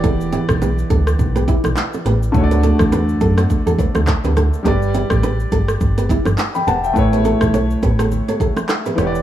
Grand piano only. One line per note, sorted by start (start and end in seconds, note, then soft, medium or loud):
0.00 2.00 E3 medium
0.00 2.01 B3 medium
0.00 2.02 G4 medium
0.00 2.06 D5 medium
2.32 4.60 D3 medium
2.32 4.61 A3 medium
2.32 4.62 F#4 medium
2.37 2.43 C#5 medium
2.44 4.66 D5 medium
4.63 6.91 G3 medium
4.63 6.92 G4 medium
4.63 6.93 B4 medium
4.68 6.93 D5 medium
6.55 6.67 G5 medium
6.55 6.67 B5 medium
6.67 6.83 F#5 medium
6.67 6.83 A5 medium
6.84 7.12 E5 medium
6.84 7.11 G5 medium
6.93 8.93 A3 medium
6.93 8.94 E4 medium
6.93 8.94 B4 medium
6.98 8.95 C#5 medium
8.95 9.22 E3 medium
8.95 9.22 B3 medium
8.95 9.22 G4 medium
9.00 9.07 C#5 medium
9.07 9.22 D5 medium